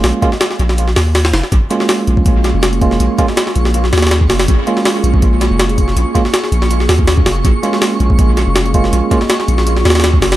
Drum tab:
HH |o---x---x---x---x---o---o-o-o---|x---x---o---x---x---x---x-x-x---|x---x---x---x---x---oooox---o-o-|x---x---o---x---x---x---x-x-x---|
SD |o-----o-o-o---o---o-o---o-o-o-o-|------o-o-----------o---o-----o-|------o-o-o---o---o-ooooo---o-o-|------o-o-----------o---o-----o-|
BD |----o---------------------------|o-------------o-o-----------o---|----o---------------------o-----|o-------------o-o-----------o---|

HH |x---x---x---x---x---o---o---o---|x---x---o---x---x---x---x-x-x---|x---x---x---x---x---oooox---o-o-|
SD |------o-o-o---o---o-o---o---o---|------o-o-----------o---o-----o-|------o-o-o---o---o-ooooo---o-o-|
BD |----o-----------------o---o-----|o-------------o-o-----------o---|----o---------------------o-----|